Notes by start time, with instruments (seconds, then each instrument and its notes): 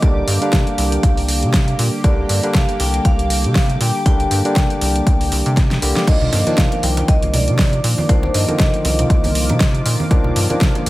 Already playing: analog synth pad A#3 G4 D6
0.02 analog synth bass C2, tine electric piano D3 G3 A#3 D4, vibraphone D5, kick, closed hi-hat
0.28 analog synth bass G2, vibraphone F5, open hi-hat
0.41 tine electric piano D3 G3 A#3 D4, closed hi-hat
0.53 analog synth bass C3, kick, snare, closed hi-hat
0.67 closed hi-hat
0.78 analog synth bass C2, open hi-hat
0.92 closed hi-hat
1.03 analog synth bass C2, kick, closed hi-hat
1.17 open hi-hat
1.28 open hi-hat
1.43 analog synth bass C3, closed hi-hat
1.54 kick, snare, closed hi-hat
1.68 closed hi-hat
1.79 analog synth bass A#2, open hi-hat
2.04 analog synth bass C2, tine electric piano D3 G3 A#3 D4, vibraphone D5, kick, closed hi-hat
2.29 analog synth bass G2, open hi-hat
2.43 tine electric piano D3 G3 A#3 D4, closed hi-hat
2.54 analog synth bass C3, vibraphone F5, kick, snare, closed hi-hat
2.69 closed hi-hat
2.80 analog synth bass C2, vibraphone G5, open hi-hat
2.94 closed hi-hat
3.05 analog synth bass C2, vibraphone F5, kick, closed hi-hat
3.19 closed hi-hat
3.30 open hi-hat
3.44 analog synth bass C3, closed hi-hat
3.55 kick, snare, open hi-hat
3.70 closed hi-hat
3.81 analog synth bass A#2, vibraphone G5, open hi-hat
4.06 analog synth bass C2, tine electric piano D3 G3 A#3 D4, vibraphone G5, kick, closed hi-hat
4.20 closed hi-hat
4.31 analog synth bass G2, open hi-hat
4.45 tine electric piano D3 G3 A#3 D4, closed hi-hat
4.56 analog synth bass C3, kick, snare, closed hi-hat
4.70 closed hi-hat
4.81 analog synth bass C2, open hi-hat
4.96 closed hi-hat
5.07 analog synth bass C2, kick, closed hi-hat
5.21 open hi-hat
5.32 analog synth bass C2, open hi-hat
5.46 analog synth bass C3, closed hi-hat
5.57 kick, snare, closed hi-hat
5.71 snare, closed hi-hat
5.82 analog synth bass C2, tine electric piano D3 G3 A#3 G4, open hi-hat
5.96 snare, closed hi-hat
6.07 analog synth bass C2, tine electric piano F3 A#3, analog synth pad F3 A#3 F4 D6, vibraphone D#5, kick, closed hi-hat, crash, muted conga
6.22 low conga
6.33 analog synth bass G2, open hi-hat, muted conga
6.46 tine electric piano D#3 F3 A#3 D4, closed hi-hat, high conga
6.58 analog synth bass C3, vibraphone F5, kick, snare, closed hi-hat
6.72 closed hi-hat, muted conga
6.83 analog synth bass C2, vibraphone G5, open hi-hat, high conga
6.97 closed hi-hat, muted conga
7.08 analog synth bass C2, vibraphone D#5, kick, closed hi-hat
7.22 closed hi-hat, high conga
7.34 vibraphone D5, open hi-hat, muted conga, low conga
7.48 analog synth bass C3, closed hi-hat
7.59 kick, snare, open hi-hat, muted conga, high conga
7.73 closed hi-hat
7.84 analog synth bass A#2, open hi-hat
7.98 muted conga, high conga
8.09 analog synth bass C2, tine electric piano D#3 F3 A#3 D4, vibraphone C5, kick, closed hi-hat
8.23 muted conga
8.34 analog synth bass G2, vibraphone D#5, open hi-hat
8.48 tine electric piano D3 D#3 F3 A#3, closed hi-hat, high conga
8.59 analog synth bass C3, kick, snare, closed hi-hat, muted conga
8.74 closed hi-hat
8.85 analog synth bass C2, open hi-hat, muted conga
8.99 closed hi-hat, low conga
9.10 analog synth bass C2, kick, closed hi-hat
9.24 open hi-hat, muted conga, high conga
9.35 open hi-hat
9.49 analog synth bass C3, closed hi-hat, muted conga
9.60 kick, snare, closed hi-hat, high conga
9.75 closed hi-hat
9.86 analog synth bass A#2, open hi-hat, muted conga
10.00 high conga
10.11 analog synth bass C2, tine electric piano D#3 F3 A#3 D4, kick, closed hi-hat, muted conga
10.24 low conga
10.36 analog synth bass G2, open hi-hat
10.50 tine electric piano D#3 F3 A#3 D4, closed hi-hat, muted conga, high conga
10.61 analog synth bass C3, kick, snare, closed hi-hat
10.75 closed hi-hat, muted conga